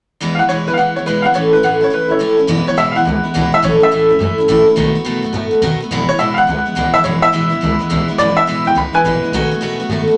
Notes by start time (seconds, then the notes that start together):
0.21 E2 B2 E3 G#3 B3 E4
0.35 F5
0.39 E3 G#3 B3 E4 F#5
0.49 E2 B2 E3 G#3 B3 E4 C#5
0.67 E3 G#3 B3 E4 B4
0.73 F5
0.77 E3 G#3 B3 E4 F#5
0.96 E3 G#3 B3 E4 C#5
1.06 E2 B2 E3 G#3 B3 E4 B4
1.22 B3 E4 F5 F#5
1.26 E3 G#3
1.34 A2 E3 A3 C#4 E4 C#5
1.53 A3 C#4 E4 B4
1.63 A2 E3 A3 C#4 E4 F#5
1.81 A3 C#4 E4 C#5
1.90 E3 A3 C#4 E4 B4
2.08 A3 C#4 E4 C#5
2.19 A2 E3 A3 C#4 E4
2.37 A3 C#4 E4
2.47 E1 E2 B2 E3 G#3 B3 E4
2.66 E3 G#3 B3 E4 C#5, muted upright bass stroke
2.77 A1 E2 B2 E3 G#3 B3 E4 E5
2.92 E4 F5
2.96 B1 E3 G#3 B3 F#5
3.05 C#2 E3 G#3 B3 E4
3.23 E3 G#3 B3 E4
3.34 C#2 E2 B2 E3 G#3 B3 E4
3.52 E3 G#3 B3 E4 E5
3.62 A1 A2 E3 A3 C#4 E4 C#5
3.80 A3 C#4 E4 E5, muted upright bass stroke
3.91 C#2 A2 E3 A3 C#4 E4
4.09 E2 A3 C#4 E4
4.19 F#2 E3 A3 C#4 E4
4.38 A3 C#4 E4, muted upright bass stroke
4.48 A1 A2 E3 A3 C#4 E4
4.66 A3 C#4 E4
4.76 B1 B2 D#3 A3 B3 F#4
4.95 A3 B3 F#4
5.05 E2 B2 D#3 A3 B3 F#4
5.22 F#2 A3 B3 F#4
5.33 A2 D#3 A3 B3 F#4
5.51 A3 B3 F#4, muted upright bass stroke
5.61 D#2 B2 D#3 A3 B3 F#4
5.80 A3 B3 F#4
5.90 E1 E2 B2 E3 G#3 B3 E4
6.09 E3 G#3 B3 E4 C#5, muted upright bass stroke
6.19 A1 E2 B2 E3 G#3 B3 E4 E5
6.34 B1 E4 F5 F#5
6.38 E3 G#3 B3
6.47 C#2 E3 G#3 B3 E4
6.66 E3 G#3 B3 E4, muted upright bass stroke
6.75 C#2 E2 B2 E3 G#3 B3 E4
6.93 E3 G#3 B3 E4 E5, muted upright bass stroke
7.04 E1 E2 B2 E3 G#3 B3 E4 C#5
7.22 E3 G#3 B3 E4 E5, muted upright bass stroke
7.32 A1 E2 B2 E3 G#3 B3 E4
7.50 B1 E3 G#3 B3 E4
7.61 C#2 E3 G#3 B3 E4
7.79 E3 G#3 B3 E4
7.90 C#2 E2 B2 E3 G#3 B3 E4
8.08 E3 G#3 B3 E4
8.18 E1 E2 B2 E3 G#3 B3 E4 D5
8.36 E3 G#3 B3 E4 E5, muted upright bass stroke
8.47 A1 E2 B2 E3 G#3 B3 E4
8.65 B1 E3 G#3 B3 E4 G5
8.75 C#2 E3 G#3 B3 E4 B5
8.93 E3 G#3 B3 E4 B4 G#5, muted upright bass stroke
9.04 A1 E2 B2 E3 G#3 B3 E4
9.22 G#3 B3 E4, muted upright bass stroke
9.26 E3
9.32 B1 B2 D#3 A3 B3 F#4
9.51 A3 B3 F#4
9.61 E2 B2 D#3 A3 B3 F#4
9.79 F#2 A3 B3 F#4
9.89 A2 D#3 A3 B3 F#4
10.08 A3 B3 F#4, muted upright bass stroke